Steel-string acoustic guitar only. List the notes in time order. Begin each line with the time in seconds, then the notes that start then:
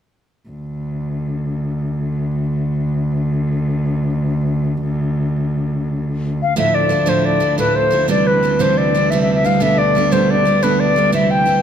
6.56 D2 A2 F3 A3 D4 E4
6.89 F3 A3 D4 E4
7.06 D2 A2 F3 A3 D4 E4
7.40 F3 A3 D4 E4
7.58 D2 A2 F3 A3 D4 E4
7.91 F3 A3 D4 E4
8.08 C3 E3 G3 C4 D4
8.43 E3 G3 C4 D4
8.59 C3 E3 G3 C4 D4
8.95 E3 G3 C4 D4
9.12 C3 E3 G3 C4 D4
9.44 E3 G3 C4 D4
9.60 B2 G3 A3 B3 D4
9.95 G3 A3 B3 D4
10.11 B2 G3 A3 B3 D4
10.45 G3 A3 B3 D4
10.63 B2 G3 A3 B3 D4
10.96 G3 A3 B3 D4
11.12 C3 E3 G3 C4 E4
11.46 E3 G3 C4 E4